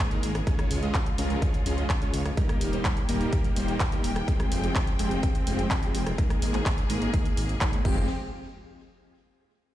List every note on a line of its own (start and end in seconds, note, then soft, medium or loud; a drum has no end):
0.00 0.45 D#3 medium
0.00 2.33 G#3 medium
0.00 0.45 A#3 medium
0.00 0.45 G#4 medium
0.11 0.31 G#3 medium
0.11 0.31 A#3 medium
0.11 0.31 D#4 medium
0.11 0.31 G#4 medium
0.11 0.31 A#4 loud
0.11 closed hi-hat soft
0.23 0.41 G#1 medium
0.23 open hi-hat medium
0.35 cross-stick medium
0.35 closed hi-hat soft
0.47 2.35 C#3 medium
0.47 2.35 F3 medium
0.47 0.80 G#3 medium
0.47 0.80 C#4 medium
0.47 2.35 F4 medium
0.47 0.80 F4 medium
0.47 0.80 G#4 medium
0.47 0.80 C#5 medium
0.47 kick loud
0.47 closed hi-hat medium
0.59 cross-stick medium
0.59 closed hi-hat soft
0.71 0.89 C#2 loud
0.71 open hi-hat loud
0.83 0.95 G#3 medium
0.83 0.95 C#4 medium
0.83 0.95 F4 medium
0.83 0.95 G#4 medium
0.83 0.95 D#5 loud
0.83 closed hi-hat soft
0.94 kick loud
0.94 clap loud
0.94 closed hi-hat medium
1.06 closed hi-hat soft
1.18 1.36 C#2 medium
1.18 1.39 G#3 medium
1.18 1.39 C#4 medium
1.18 1.39 F4 medium
1.18 1.39 G#4 medium
1.18 1.39 A#4 medium
1.18 open hi-hat medium
1.30 closed hi-hat soft
1.42 1.54 G#3 medium
1.42 1.54 C#4 medium
1.42 1.54 F4 medium
1.42 1.54 G#4 medium
1.42 1.54 C#5 loud
1.42 kick loud
1.42 closed hi-hat medium
1.54 closed hi-hat soft
1.66 1.84 C#2 medium
1.66 1.85 G#3 medium
1.66 1.85 C#4 medium
1.66 1.85 F4 medium
1.66 1.85 G#4 medium
1.66 1.85 D#5 loud
1.66 open hi-hat loud
1.78 closed hi-hat soft
1.90 kick loud
1.90 clap loud
1.90 closed hi-hat medium
2.02 2.21 G#3 medium
2.02 2.21 C#4 medium
2.02 2.21 F4 medium
2.02 2.21 G#4 medium
2.02 2.21 C#5 loud
2.02 closed hi-hat soft
2.14 2.31 C#2 medium
2.14 open hi-hat medium
2.26 cross-stick medium
2.26 closed hi-hat soft
2.37 4.26 D#3 medium
2.37 4.26 G3 medium
2.37 2.70 G3 medium
2.37 4.26 A#3 medium
2.37 2.70 A#3 medium
2.37 2.70 D#4 medium
2.37 2.70 G4 medium
2.37 2.70 A#4 medium
2.37 6.15 G5 medium
2.37 kick loud
2.37 closed hi-hat medium
2.49 cross-stick medium
2.49 closed hi-hat soft
2.61 2.79 D#1 loud
2.61 open hi-hat loud
2.73 2.85 G3 medium
2.73 2.85 A#3 medium
2.73 2.85 D#4 medium
2.73 2.85 G4 medium
2.73 2.85 C5 medium
2.73 closed hi-hat soft
2.85 kick loud
2.85 clap loud
2.85 closed hi-hat medium
2.97 closed hi-hat soft
3.09 3.27 D#1 medium
3.09 3.30 G3 medium
3.09 3.30 A#3 medium
3.09 3.30 D#4 medium
3.09 3.30 G4 medium
3.09 3.30 A#4 loud
3.09 open hi-hat medium
3.21 closed hi-hat soft
3.33 3.45 G3 medium
3.33 3.45 A#3 medium
3.33 3.45 D#4 medium
3.33 3.45 A#4 loud
3.33 kick loud
3.33 closed hi-hat medium
3.44 closed hi-hat soft
3.56 3.74 D#1 medium
3.56 3.76 G3 medium
3.56 3.76 A#3 medium
3.56 3.76 D#4 medium
3.56 3.76 G4 medium
3.56 3.76 C5 loud
3.56 open hi-hat medium
3.68 closed hi-hat soft
3.80 kick loud
3.80 clap loud
3.80 closed hi-hat medium
3.92 4.12 G3 loud
3.92 4.12 A#3 medium
3.92 4.11 D#4 medium
3.92 4.12 G4 medium
3.92 4.12 A#4 loud
3.92 closed hi-hat soft
4.04 4.22 D#1 medium
4.04 open hi-hat medium
4.16 cross-stick medium
4.16 closed hi-hat soft
4.28 6.16 F3 medium
4.28 7.81 G#3 medium
4.28 4.61 G#3 medium
4.28 6.16 C4 medium
4.28 4.61 C4 medium
4.28 4.61 F4 medium
4.28 4.61 G4 medium
4.28 4.61 G#4 medium
4.28 kick loud
4.28 closed hi-hat medium
4.40 cross-stick medium
4.40 closed hi-hat soft
4.52 4.70 F1 loud
4.52 open hi-hat loud
4.64 4.76 G#3 medium
4.64 4.76 C4 medium
4.64 4.76 F4 medium
4.64 4.76 G4 medium
4.64 4.76 G#4 medium
4.64 closed hi-hat soft
4.75 kick loud
4.75 clap loud
4.75 closed hi-hat medium
4.87 closed hi-hat soft
4.99 5.17 F1 medium
4.99 5.20 G#3 medium
4.99 5.20 C4 medium
4.99 5.20 F4 medium
4.99 5.20 G4 medium
4.99 5.20 G#4 medium
4.99 open hi-hat medium
5.11 closed hi-hat soft
5.23 5.35 F4 medium
5.23 5.35 G4 medium
5.23 5.35 G#4 loud
5.23 kick loud
5.23 closed hi-hat medium
5.35 closed hi-hat soft
5.47 5.65 F1 medium
5.47 5.66 G#3 loud
5.47 5.66 C4 medium
5.47 5.66 F4 medium
5.47 5.66 G4 medium
5.47 5.66 G#4 loud
5.47 open hi-hat loud
5.59 closed hi-hat soft
5.71 kick loud
5.71 clap loud
5.71 closed hi-hat medium
5.83 6.02 G#3 medium
5.83 6.02 C4 medium
5.83 6.02 F4 medium
5.83 6.02 G4 medium
5.83 6.02 G#4 loud
5.83 closed hi-hat soft
5.95 6.12 F1 medium
5.95 open hi-hat medium
6.07 cross-stick medium
6.07 closed hi-hat soft
6.18 7.83 D#3 medium
6.18 6.51 G#3 medium
6.18 7.83 A#3 medium
6.18 6.51 A#3 medium
6.18 6.51 D#4 medium
6.18 7.83 G#4 medium
6.18 6.51 G#4 medium
6.18 6.51 A#4 medium
6.18 kick loud
6.18 closed hi-hat medium
6.30 cross-stick medium
6.30 closed hi-hat soft
6.42 6.60 G#1 loud
6.42 open hi-hat loud
6.54 6.66 G#3 medium
6.54 6.66 A#3 medium
6.54 6.66 D#4 medium
6.54 6.66 G#4 medium
6.54 6.66 C5 loud
6.54 cross-stick medium
6.54 clap soft
6.54 closed hi-hat soft
6.66 kick loud
6.66 clap loud
6.66 closed hi-hat medium
6.78 closed hi-hat soft
6.90 7.08 G#1 medium
6.90 7.11 G#3 medium
6.90 7.11 A#3 medium
6.90 7.11 D#4 medium
6.90 7.11 G#4 medium
6.90 7.11 A#4 medium
6.90 open hi-hat medium
7.02 closed hi-hat soft
7.14 7.26 G#3 medium
7.14 7.26 A#3 medium
7.14 7.26 D#4 medium
7.14 7.26 G#4 medium
7.14 7.26 A#4 loud
7.14 kick loud
7.14 closed hi-hat medium
7.25 closed hi-hat soft
7.37 7.55 G#1 medium
7.37 open hi-hat medium
7.49 closed hi-hat soft
7.61 7.81 G#3 loud
7.61 7.81 A#3 medium
7.61 7.81 D#4 medium
7.61 7.81 G#4 medium
7.61 7.81 C5 loud
7.61 kick loud
7.61 clap loud
7.61 closed hi-hat medium
7.73 closed hi-hat soft
7.85 8.07 F1 medium
7.85 8.07 F3 medium
7.85 8.07 G#3 medium
7.85 8.03 G#3 medium
7.85 8.07 C4 medium
7.85 8.03 C4 medium
7.85 8.03 F4 medium
7.85 8.07 G4 medium
7.85 8.03 G4 medium
7.85 8.03 G#4 loud
7.85 kick loud
7.85 crash medium